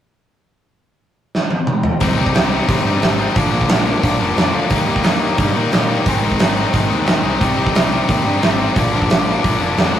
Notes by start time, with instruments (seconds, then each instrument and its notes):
1.35 snare
1.50 high tom
1.67 mid tom
1.83 floor tom
2.00 picked electric bass C2, distorted electric guitar C3 G3 C4 D#4, kick, open hi-hat
2.17 picked electric bass C2, distorted electric guitar C3 G3 C4 D#4
2.26 kick
2.35 picked electric bass C2, distorted electric guitar C3 G3 C4 D#4, snare, open hi-hat
2.51 distorted electric guitar C3 G3 C4 D#4
2.68 picked electric bass D#2, distorted electric guitar C3 G3 C4 D#4, kick, open hi-hat
2.85 picked electric bass G2, distorted electric guitar C3 G3 C4 D#4
3.01 picked electric bass G#1, distorted electric guitar C3 G3 C4 D#4, snare, open hi-hat
3.19 distorted electric guitar C3 G3 C4 D#4
3.35 picked electric bass A#1, distorted electric guitar A#2 D3 F3 A#3 D4, kick, open hi-hat
3.51 picked electric bass A#1, distorted electric guitar A#2 D3 F3 A#3 D4
3.61 kick
3.69 picked electric bass A#1, distorted electric guitar A#2 D3 F3 A#3 D4, snare, open hi-hat
3.86 distorted electric guitar A#2 D3 F3 A#3 D4
4.03 picked electric bass A#1, distorted electric guitar A#2 D3 F3 A#3 D4, kick, open hi-hat
4.20 picked electric bass F1, distorted electric guitar A#2 D3 F3 A#3 D4
4.37 picked electric bass F2, distorted electric guitar A#2 D3 F3 A#3 D4, snare, open hi-hat
4.53 picked electric bass D2, distorted electric guitar A#2 D3 F3 A#3 D4
4.70 picked electric bass D#2, distorted electric guitar D#3 G3 A#3 D#4, kick, open hi-hat
4.86 picked electric bass D#2, distorted electric guitar D#3 G3 A#3 D#4
4.96 kick
5.03 picked electric bass D#2, distorted electric guitar D#3 G3 A#3 D#4, snare, open hi-hat
5.21 distorted electric guitar D#3 G3 A#3 D#4
5.38 picked electric bass G2, distorted electric guitar D#3 G3 A#3 D#4, kick, open hi-hat
5.55 picked electric bass A#2, distorted electric guitar D#3 G3 A#3 D#4
5.72 picked electric bass A#2, distorted electric guitar D#3 G3 A#3 D#4, snare, open hi-hat
5.89 distorted electric guitar D#3 G3 A#3 D#4
6.06 picked electric bass G#1, distorted electric guitar G#2 D#3 G#3 C4 D#4, kick, open hi-hat
6.23 picked electric bass G#1, distorted electric guitar G#2 D#3 G#3 C4 D#4
6.32 kick
6.39 picked electric bass G#1, distorted electric guitar G#2 D#3 G#3 C4 D#4, snare, open hi-hat
6.56 distorted electric guitar G#2 D#3 G#3 C4 D#4
6.72 picked electric bass G#1, distorted electric guitar G#2 D#3 G#3 C4 D#4, kick, open hi-hat
6.89 picked electric bass D#2, distorted electric guitar G#2 D#3 G#3 C4 D#4
7.06 picked electric bass D#2, distorted electric guitar G#2 D#3 G#3 C4 D#4, snare, open hi-hat
7.24 picked electric bass C2, distorted electric guitar G#2 D#3 G#3 C4 D#4
7.40 picked electric bass C2, distorted electric guitar C3 G3 C4 D#4, kick, open hi-hat
7.57 picked electric bass C2, distorted electric guitar C3 G3 C4 D#4
7.66 kick
7.74 picked electric bass C2, distorted electric guitar C3 G3 C4 D#4, snare, open hi-hat
7.91 distorted electric guitar C3 G3 C4 D#4
8.08 picked electric bass D#2, distorted electric guitar C3 G3 C4 D#4, kick, open hi-hat
8.25 picked electric bass G2, distorted electric guitar C3 G3 C4 D#4
8.41 picked electric bass G#1, distorted electric guitar C3 G3 C4 D#4, snare, open hi-hat
8.58 distorted electric guitar C3 G3 C4 D#4
8.75 picked electric bass A#1, distorted electric guitar A#2 D3 F3 A#3 D4, kick, open hi-hat
8.92 picked electric bass A#1, distorted electric guitar A#2 D3 F3 A#3 D4
9.02 kick
9.09 picked electric bass A#1, distorted electric guitar A#2 D3 F3 A#3 D4, snare, open hi-hat
9.25 distorted electric guitar A#2 D3 F3 A#3 D4
9.43 picked electric bass A#1, distorted electric guitar A#2 D3 F3 A#3 D4, kick, open hi-hat
9.60 picked electric bass F1, distorted electric guitar A#2 D3 F3 A#3 D4
9.77 picked electric bass F2, distorted electric guitar A#2 D3 F3 A#3 D4, snare, open hi-hat
9.94 picked electric bass D2, distorted electric guitar A#2 D3 F3 A#3 D4